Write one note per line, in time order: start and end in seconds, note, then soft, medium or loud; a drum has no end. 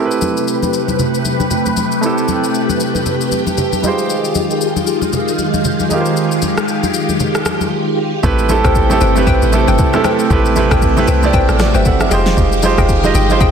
0.00 3.80 C3 medium
0.00 1.98 A3 medium
0.00 3.80 A3 medium
0.00 1.99 C4 medium
0.00 1.99 E4 medium
0.00 2.00 G4 medium
0.00 5.87 G4 medium
0.00 3.80 B4 medium
0.06 2.04 B4 medium
0.11 shaker soft
0.21 high conga medium
0.21 shaker medium
0.37 shaker medium
0.48 shaker medium
0.63 high conga medium
0.63 shaker medium
0.74 shaker loud
0.88 high conga medium
0.88 shaker soft
0.99 low conga medium
0.99 shaker medium
1.14 shaker soft
1.25 high conga soft
1.25 shaker medium
1.40 high conga medium
1.40 shaker soft
1.51 low conga medium
1.51 shaker medium
1.66 high conga medium
1.66 shaker medium
1.77 high conga medium
1.77 shaker medium
1.92 shaker soft
2.01 3.79 A3 medium
2.01 3.80 C4 medium
2.01 3.81 E4 medium
2.01 3.81 G4 medium
2.01 shaker medium
2.06 3.82 A4 medium
2.18 shaker soft
2.28 high conga medium
2.28 shaker medium
2.44 shaker medium
2.54 shaker medium
2.69 high conga medium
2.69 shaker medium
2.80 shaker loud
2.95 high conga medium
2.95 shaker soft
3.06 low conga medium
3.06 shaker medium
3.21 shaker medium
3.32 high conga soft
3.32 shaker medium
3.47 high conga medium
3.47 shaker soft
3.58 low conga medium
3.58 shaker medium
3.73 high conga medium
3.73 shaker medium
3.82 8.20 D#3 medium
3.82 3.90 G3 medium
3.82 8.19 G#3 medium
3.82 5.87 D#4 medium
3.82 8.19 F4 medium
3.82 5.87 F4 medium
3.82 5.88 G4 medium
3.82 high conga medium
3.82 shaker medium
3.87 5.87 G#3 medium
3.87 5.88 C5 medium
3.98 shaker soft
4.10 shaker medium
4.25 shaker soft
4.35 high conga medium
4.35 shaker medium
4.51 shaker medium
4.61 shaker medium
4.76 high conga medium
4.76 shaker medium
4.87 shaker loud
5.02 high conga medium
5.02 shaker soft
5.13 low conga medium
5.13 shaker medium
5.28 shaker medium
5.39 high conga soft
5.39 shaker medium
5.54 high conga medium
5.54 shaker soft
5.65 low conga medium
5.65 shaker medium
5.80 high conga medium
5.80 shaker medium
5.89 7.93 G#3 medium
5.89 7.93 D#4 medium
5.89 7.94 F4 medium
5.89 8.21 G4 medium
5.89 7.95 G4 medium
5.89 high conga medium
5.89 shaker medium
5.94 6.00 A#4 medium
6.00 7.98 C5 medium
6.05 shaker soft
6.17 shaker medium
6.32 shaker soft
6.42 high conga medium
6.42 shaker medium
6.58 cross-stick medium
6.58 shaker medium
6.68 shaker medium
6.83 high conga medium
6.83 shaker medium
6.94 shaker loud
7.09 high conga medium
7.09 shaker soft
7.20 low conga medium
7.20 shaker medium
7.35 cross-stick medium
7.35 shaker medium
7.46 cross-stick loud
7.46 high conga soft
7.46 shaker medium
7.61 high conga medium
7.61 shaker soft
8.23 8.62 A1 loud
8.23 12.08 C3 medium
8.23 8.45 A3 medium
8.23 12.08 A3 medium
8.23 10.28 C4 medium
8.23 8.45 C4 medium
8.23 8.45 E4 medium
8.23 8.46 G4 medium
8.23 8.46 B4 loud
8.23 13.51 G5 medium
8.23 kick loud
8.23 shaker medium
8.39 shaker medium
8.49 8.81 A3 medium
8.49 8.81 C4 medium
8.49 8.82 E4 medium
8.49 8.82 G4 medium
8.49 8.82 A4 loud
8.49 high conga medium
8.49 shaker medium
8.64 8.99 A1 loud
8.64 8.72 B4 medium
8.64 8.72 C5 medium
8.64 8.72 G5 medium
8.64 kick loud
8.64 cross-stick loud
8.64 shaker medium
8.75 kick loud
8.75 shaker medium
8.89 9.10 A3 medium
8.89 9.10 C4 medium
8.89 9.10 E4 medium
8.89 9.11 G4 medium
8.89 9.11 A4 loud
8.89 high conga medium
8.89 shaker medium
9.01 9.26 G1 loud
9.01 9.12 B4 medium
9.01 9.12 C5 medium
9.01 9.12 G5 medium
9.01 low conga medium
9.01 shaker loud
9.15 9.46 A3 medium
9.15 9.46 C4 medium
9.15 9.47 E4 medium
9.15 9.47 G4 medium
9.15 9.47 B4 medium
9.15 high conga medium
9.15 shaker soft
9.27 9.41 A1 loud
9.27 9.64 B4 loud
9.27 9.64 C5 medium
9.27 9.64 G5 loud
9.27 kick loud
9.27 low conga medium
9.27 shaker medium
9.42 9.66 A1 loud
9.42 shaker medium
9.52 9.84 A3 medium
9.52 9.85 C4 medium
9.52 9.85 E4 medium
9.52 9.85 G4 medium
9.52 9.86 A4 loud
9.52 high conga medium
9.52 shaker medium
9.68 9.78 G1 loud
9.68 9.75 B4 medium
9.68 9.76 C5 medium
9.68 9.76 G5 medium
9.68 high conga medium
9.68 shaker medium
9.78 kick loud
9.78 low conga medium
9.78 shaker medium
9.93 10.24 A3 medium
9.93 10.24 C4 medium
9.93 10.24 E4 medium
9.93 10.25 G4 medium
9.93 10.25 A4 loud
9.93 cross-stick medium
9.93 high conga medium
9.93 shaker medium
10.04 10.15 B4 medium
10.04 10.15 C5 medium
10.04 10.15 G5 medium
10.04 cross-stick loud
10.04 high conga medium
10.04 shaker loud
10.19 shaker soft
10.30 10.69 A1 loud
10.30 10.52 A3 medium
10.30 12.10 C4 medium
10.30 10.52 C4 medium
10.30 10.52 E4 medium
10.30 10.53 G4 medium
10.30 10.53 B4 loud
10.30 kick loud
10.30 shaker medium
10.45 shaker medium
10.56 10.88 A3 medium
10.56 10.88 C4 medium
10.56 10.89 E4 medium
10.56 10.89 G4 medium
10.56 10.89 B4 loud
10.56 high conga medium
10.56 shaker medium
10.71 11.06 A1 loud
10.71 10.79 B4 medium
10.71 10.79 C5 medium
10.71 10.79 G5 medium
10.71 kick loud
10.71 cross-stick loud
10.71 shaker medium
10.82 kick loud
10.82 shaker medium
10.97 11.17 A3 medium
10.97 11.17 C4 medium
10.97 11.17 E4 medium
10.97 11.18 G4 medium
10.97 11.18 B4 loud
10.97 high conga medium
10.97 shaker medium
11.08 11.32 C2 medium
11.08 11.18 B4 medium
11.08 11.19 C5 medium
11.08 11.19 G5 medium
11.08 low conga medium
11.08 shaker loud
11.22 11.53 A3 medium
11.22 11.53 C4 medium
11.22 11.54 E4 medium
11.22 11.54 G4 medium
11.22 11.54 D5 loud
11.22 high conga medium
11.22 shaker soft
11.33 11.48 A1 loud
11.33 11.44 B4 loud
11.33 11.44 C5 medium
11.33 11.45 G5 loud
11.33 kick loud
11.33 low conga medium
11.33 shaker medium
11.49 11.73 A1 medium
11.49 cross-stick medium
11.49 shaker medium
11.59 11.75 F#4 medium
11.59 11.74 D5 medium
11.59 cross-stick loud
11.59 snare medium
11.59 high conga medium
11.59 shaker medium
11.74 12.09 G1 loud
11.74 11.86 G4 medium
11.74 11.82 B4 medium
11.74 11.82 C5 medium
11.74 11.86 E5 medium
11.74 11.83 G5 medium
11.74 high conga medium
11.74 shaker soft
11.85 12.00 A4 medium
11.85 12.00 F#5 medium
11.85 kick loud
11.85 low conga medium
11.85 shaker medium
12.00 12.11 G4 medium
12.00 12.25 E5 medium
12.00 cross-stick medium
12.00 high conga medium
12.00 shaker medium
12.10 12.36 F1 loud
12.10 13.51 D#3 medium
12.10 12.54 G#3 medium
12.10 13.51 G#3 medium
12.10 12.54 D#4 medium
12.10 13.51 F4 medium
12.10 12.55 F4 medium
12.10 12.55 G4 medium
12.10 12.22 G#4 medium
12.10 12.55 C5 loud
12.10 12.22 D#5 medium
12.10 12.22 G5 medium
12.10 high conga medium
12.10 shaker loud
12.26 snare medium
12.26 shaker soft
12.37 12.76 F1 loud
12.37 kick loud
12.37 shaker medium
12.52 shaker medium
12.62 12.95 G#3 medium
12.62 12.95 D#4 medium
12.62 12.95 F4 medium
12.62 12.96 G4 medium
12.62 12.96 C5 loud
12.62 high conga medium
12.62 shaker medium
12.78 13.13 F1 loud
12.78 12.86 G#4 medium
12.78 12.86 D#5 medium
12.78 12.86 G5 medium
12.78 kick loud
12.78 cross-stick medium
12.78 shaker medium
12.89 kick loud
12.89 shaker medium
13.04 13.24 G#3 medium
13.04 13.24 D#4 medium
13.04 13.24 F4 medium
13.04 13.25 G4 medium
13.04 13.25 D#5 loud
13.04 high conga medium
13.04 shaker medium
13.15 13.39 G1 loud
13.15 13.26 G#4 medium
13.15 13.26 D#5 medium
13.15 13.26 G5 medium
13.15 low conga medium
13.15 shaker loud
13.29 13.51 G#3 medium
13.29 13.51 D#4 medium
13.29 13.51 F4 medium
13.29 13.51 G4 medium
13.29 13.51 C5 loud
13.29 high conga medium
13.29 shaker soft
13.40 13.51 G#1 loud
13.40 13.51 G#4 loud
13.40 13.51 D#5 medium
13.40 13.51 G5 loud
13.40 kick loud
13.40 low conga medium
13.40 shaker medium